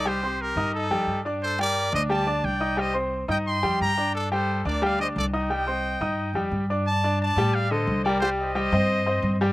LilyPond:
<<
  \new Staff \with { instrumentName = "Trumpet section" } { \time 4/4 \key g \minor \tempo 4 = 176 <g' c''>4 <g' bes'>4 <ees' a'>4. r8 | <a' c''>8 <bes' d''>4 <c'' ees''>8 <d'' a''>4 <d'' g''>4 | <c'' ees''>8 r4 <ees'' g''>8 <g'' c'''>4 <g'' bes''>4 | <d' a'>8 <a' c''>4 <bes' d''>8 <d'' f''>8 <c'' ees''>8 <a' d''>8 <ees'' g''>8~ |
<ees'' g''>2. r4 | <d'' a''>4 <d'' a''>4 <d'' f''>8 <c'' ees''>4 <bes' d''>8 | <g' c''>8 <c'' ees''>2. r8 | }
  \new Staff \with { instrumentName = "Grand piano" } { \time 4/4 \key g \minor <g g' g''>8 <c' c'' c'''>4 <ees' ees'' ees'''>4 <g g' g''>4 <d' d'' d'''>8~ | <d' d'' d'''>8 <g g' g''>4 <d' d'' d'''>8 <g g' g''>8 <d' d'' d'''>4 <ees' ees'' ees'''>8 | <g g' g''>8 <c' c'' c'''>4 <ees' ees'' ees'''>4 <g g' g''>4 <d' d'' d'''>8~ | <d' d'' d'''>8 <g g' g''>4 <d' d'' d'''>8 <g g' g''>8 <d' d'' d'''>4 <ees' ees'' ees'''>8 |
<g g' g''>8 <c' c'' c'''>4 <ees' ees'' ees'''>4 <g g' g''>4 <d' d'' d'''>8 | r8 <d' d''>4 <g g' g''>4 <d a'>4 <g g' g''>8 | <g g' g''>4 <g g' g''>8 <c' c'' ees''>4 <c' c'' ees''>4 <g g' g''>8 | }
  \new Staff \with { instrumentName = "Upright bass" } { \clef bass \time 4/4 \key g \minor c,4. g,4 f,8 g,4~ | g,4. d,4. c,4~ | c,4. g,4 f,8 g,4~ | g,4. d,4. c,4~ |
c,4. g,4 f,8 g,4~ | g,4. a,4. c,4~ | c,4. g,4. g,4 | }
>>